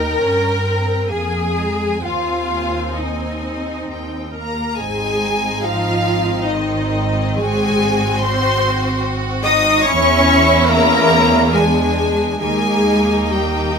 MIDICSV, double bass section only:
0, 0, Header, 1, 2, 480
1, 0, Start_track
1, 0, Key_signature, -4, "major"
1, 0, Tempo, 887574
1, 609, Tempo, 917431
1, 1089, Time_signature, 3, 2, 24, 8
1, 2529, Tempo, 834492
1, 3489, Tempo, 920245
1, 3969, Tempo, 846262
1, 4449, Tempo, 813008
1, 5409, Tempo, 843882
1, 6369, Tempo, 864553
1, 6849, Tempo, 921659
1, 7567, End_track
2, 0, Start_track
2, 0, Title_t, "Double bass section"
2, 0, Program_c, 0, 48
2, 0, Note_on_c, 0, 39, 76
2, 116, Note_off_c, 0, 39, 0
2, 129, Note_on_c, 0, 43, 64
2, 601, Note_off_c, 0, 43, 0
2, 611, Note_on_c, 0, 41, 67
2, 1080, Note_off_c, 0, 41, 0
2, 1092, Note_on_c, 0, 39, 65
2, 2042, Note_off_c, 0, 39, 0
2, 2048, Note_on_c, 0, 39, 61
2, 2413, Note_off_c, 0, 39, 0
2, 2528, Note_on_c, 0, 32, 85
2, 5385, Note_off_c, 0, 32, 0
2, 5412, Note_on_c, 0, 40, 111
2, 6845, Note_on_c, 0, 39, 79
2, 6850, Note_off_c, 0, 40, 0
2, 7567, Note_off_c, 0, 39, 0
2, 7567, End_track
0, 0, End_of_file